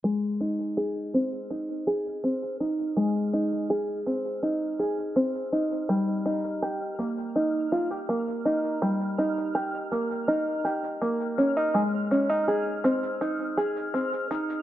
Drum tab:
SH |x-xxx-xxx-xxxxxx|x-xxx-xxx-xxxxxx|x-xxx-xxx-xxxxxx|xxxxxxxxx-xxxxxx|

SH |x-xxx-xxx-xxxxxx|